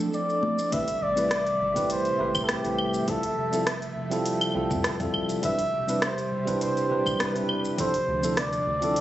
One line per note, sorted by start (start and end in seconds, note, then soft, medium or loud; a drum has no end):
0.00 0.67 F3 medium
0.00 0.71 F3 medium
0.00 0.68 C4 medium
0.00 0.69 D4 medium
0.00 0.70 D4 medium
0.00 0.70 E4 medium
0.00 0.70 A4 medium
0.00 0.71 A4 medium
0.00 shaker medium
0.13 0.75 D5 loud
0.13 shaker soft
0.29 shaker soft
0.43 high conga medium
0.59 shaker medium
0.71 0.82 A1 loud
0.71 9.01 C3 medium
0.71 3.05 G3 medium
0.71 0.84 A3 medium
0.71 3.06 A3 medium
0.71 0.85 C4 medium
0.71 0.85 E4 medium
0.71 0.86 G4 medium
0.71 0.86 B4 medium
0.71 7.75 E5 medium
0.71 1.04 E5 loud
0.71 kick loud
0.71 closed hi-hat medium
0.71 shaker medium
0.88 closed hi-hat soft
0.88 shaker soft
1.02 1.52 A1 loud
1.02 1.91 D5 loud
1.15 1.28 A3 medium
1.15 1.28 C4 medium
1.15 1.28 E4 medium
1.15 1.29 G4 medium
1.15 1.29 B4 medium
1.15 closed hi-hat soft
1.15 shaker medium
1.31 cross-stick loud
1.31 closed hi-hat medium
1.31 shaker medium
1.47 closed hi-hat soft
1.47 shaker soft
1.61 2.11 A1 medium
1.74 2.15 A3 medium
1.74 2.16 C4 medium
1.74 2.16 E4 medium
1.74 2.16 G4 medium
1.74 2.17 B4 loud
1.74 kick medium
1.74 closed hi-hat soft
1.74 shaker medium
1.90 2.46 C5 loud
1.90 closed hi-hat medium
1.90 shaker medium
2.05 closed hi-hat soft
2.05 shaker soft
2.18 2.55 A1 medium
2.18 2.60 A3 medium
2.18 2.60 C4 medium
2.18 2.61 E4 medium
2.18 2.61 G4 medium
2.18 2.61 B4 medium
2.35 kick loud
2.35 claves medium
2.35 shaker medium
2.44 2.52 A4 medium
2.49 3.11 G4 medium
2.49 cross-stick loud
2.49 closed hi-hat medium
2.49 shaker medium
2.63 3.00 A1 loud
2.63 3.04 A3 medium
2.63 3.04 C4 medium
2.63 3.04 E4 medium
2.63 3.05 G4 medium
2.63 3.05 B4 medium
2.63 closed hi-hat soft
2.63 shaker soft
2.78 claves medium
2.94 shaker medium
3.06 5.41 F3 medium
3.06 3.20 G3 medium
3.06 5.41 A3 medium
3.06 3.20 C4 medium
3.06 3.20 E4 medium
3.06 3.21 F4 medium
3.06 3.21 A4 medium
3.06 3.68 A4 medium
3.06 kick loud
3.06 closed hi-hat medium
3.06 shaker medium
3.23 closed hi-hat soft
3.23 shaker soft
3.38 3.88 F1 loud
3.51 3.63 G3 medium
3.51 3.64 C4 medium
3.51 3.64 E4 medium
3.51 3.65 F4 medium
3.51 3.65 A4 medium
3.51 closed hi-hat soft
3.51 shaker medium
3.67 cross-stick loud
3.67 closed hi-hat medium
3.67 shaker medium
3.82 closed hi-hat soft
3.82 shaker soft
3.96 4.47 F1 medium
4.10 4.51 G3 medium
4.10 4.51 C4 medium
4.10 4.52 E4 medium
4.10 4.52 F4 medium
4.10 4.52 A4 loud
4.10 closed hi-hat soft
4.10 shaker medium
4.26 closed hi-hat medium
4.26 shaker medium
4.41 closed hi-hat soft
4.41 claves medium
4.41 shaker soft
4.54 4.65 C2 loud
4.54 4.96 G3 medium
4.54 4.96 C4 medium
4.54 4.96 E4 medium
4.54 4.97 F4 medium
4.54 4.97 A4 medium
4.71 4.88 F2 loud
4.71 kick loud
4.71 shaker medium
4.84 cross-stick loud
4.84 closed hi-hat medium
4.84 shaker medium
4.99 5.09 F2 loud
4.99 5.39 G3 medium
4.99 5.40 C4 medium
4.99 5.40 E4 medium
4.99 5.41 F4 medium
4.99 5.41 A4 medium
4.99 kick loud
4.99 closed hi-hat soft
4.99 shaker soft
5.14 kick medium
5.14 claves medium
5.29 closed hi-hat soft
5.29 shaker medium
5.41 5.53 E1 loud
5.41 5.55 G3 medium
5.41 7.76 G3 medium
5.41 5.55 C4 medium
5.41 5.56 D4 medium
5.41 5.56 E4 medium
5.41 7.76 G4 medium
5.41 5.57 B4 medium
5.41 kick loud
5.41 closed hi-hat medium
5.41 shaker medium
5.45 6.05 E5 loud
5.59 closed hi-hat soft
5.59 shaker soft
5.73 6.23 E1 loud
5.86 5.98 G3 medium
5.86 5.99 C4 medium
5.86 5.99 D4 medium
5.86 6.00 E4 medium
5.86 6.00 B4 medium
5.86 closed hi-hat soft
5.86 shaker medium
6.02 6.62 C5 loud
6.02 cross-stick loud
6.02 closed hi-hat medium
6.02 shaker medium
6.18 closed hi-hat soft
6.18 shaker soft
6.31 6.82 E1 medium
6.45 6.86 G3 loud
6.45 6.87 C4 medium
6.45 6.87 D4 medium
6.45 6.87 E4 medium
6.45 6.88 B4 loud
6.45 kick medium
6.45 closed hi-hat soft
6.45 shaker medium
6.61 7.23 C5 loud
6.61 closed hi-hat medium
6.61 shaker medium
6.77 closed hi-hat soft
6.77 shaker soft
6.89 7.26 E1 medium
6.89 7.31 G3 medium
6.89 7.31 C4 medium
6.89 7.32 D4 medium
6.89 7.32 E4 medium
6.89 7.32 B4 medium
7.06 kick loud
7.06 claves medium
7.06 shaker medium
7.20 7.80 B4 medium
7.20 cross-stick loud
7.20 closed hi-hat medium
7.20 shaker medium
7.34 7.70 E1 loud
7.34 7.74 G3 medium
7.34 7.75 C4 medium
7.34 7.75 D4 medium
7.34 7.76 E4 medium
7.34 7.76 B4 medium
7.34 closed hi-hat soft
7.34 shaker soft
7.49 claves medium
7.65 shaker medium
7.77 7.90 F3 medium
7.77 9.01 F3 medium
7.77 9.01 A3 medium
7.77 7.91 C4 medium
7.77 9.01 D4 medium
7.77 7.91 D4 medium
7.77 7.91 E4 medium
7.77 7.92 A4 medium
7.77 8.34 C5 loud
7.77 kick loud
7.77 closed hi-hat medium
7.77 shaker medium
7.94 closed hi-hat soft
7.94 shaker soft
8.08 8.58 D2 loud
8.22 8.34 F3 medium
8.22 8.34 C4 medium
8.22 8.35 D4 medium
8.22 8.35 E4 medium
8.22 8.35 A4 medium
8.22 closed hi-hat soft
8.22 shaker medium
8.37 9.01 D5 loud
8.37 cross-stick loud
8.37 closed hi-hat medium
8.37 shaker medium
8.53 closed hi-hat soft
8.53 shaker soft
8.67 9.01 D2 medium
8.81 9.01 F3 medium
8.81 9.01 C4 medium
8.81 9.01 D4 medium
8.81 9.01 E4 medium
8.81 9.01 A4 loud
8.81 closed hi-hat soft
8.81 shaker medium
8.96 closed hi-hat medium
8.96 shaker medium